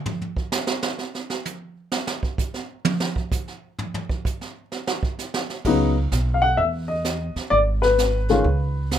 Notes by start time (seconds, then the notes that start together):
0.06 floor tom
0.21 floor tom
0.37 kick
0.52 snare, hi-hat pedal
0.67 snare
0.83 snare
0.98 snare
1.15 snare
1.30 snare
1.45 hi-hat pedal, high tom
1.92 snare
2.07 snare
2.23 kick
2.38 kick, hi-hat pedal
2.54 snare
2.85 high tom
3.00 snare
3.16 kick
3.32 kick, hi-hat pedal
3.48 snare
3.79 floor tom
3.94 floor tom
4.09 kick
4.25 kick, hi-hat pedal
4.41 snare
4.72 snare
4.87 snare
5.03 kick
5.19 snare, hi-hat pedal
5.34 snare
5.50 snare
5.65 C#2 C#3 F#3 B3 D#4, brush sweep, kick, crash
6.12 B1, snare, hi-hat pedal
6.34 F5
6.42 F#5
6.57 E2 E5, brush sweep
6.88 D#5
7.05 snare, hi-hat pedal
7.36 muted upright bass stroke, snare
7.50 G#1 D5, brush sweep
7.82 B4, snare
7.98 snare, hi-hat pedal
8.28 D#3 G#3 C#4 F4, snare
8.44 C#2, brush sweep
8.91 snare, hi-hat pedal